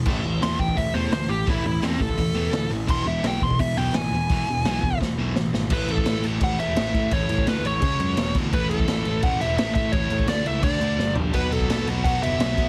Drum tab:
CC |x---------------|----------------|x---------------|----------------|
HH |----o---o---o---|o---o---o---o---|----o---o---o---|o---o-----------|
SD |----o-------o---|----o-------o---|----o-------o---|----o---o---o-o-|
FT |----------------|----------------|----------------|----------------|
BD |o-----ooo-------|o-----ooo-------|o-----ooo-------|o-----ooo-------|

CC |x-x-x-x-x-x-x-x-|x-x-x-x-x-x-x-x-|x-x-x-x-x-x-x-x-|x-x-x-x-x-x-----|
HH |----------------|----------------|----------------|----------------|
SD |----o-------o---|----o-------o---|----o-------o---|----o-------o---|
FT |----------------|----------------|----------------|--------------o-|
BD |o--o----o-----o-|o--o----o-----o-|o--o----o-----o-|o--o----o-------|

CC |x-x-x-x-x-x-x-x-|
HH |----------------|
SD |----o-------o---|
FT |----------------|
BD |o--o----o-----o-|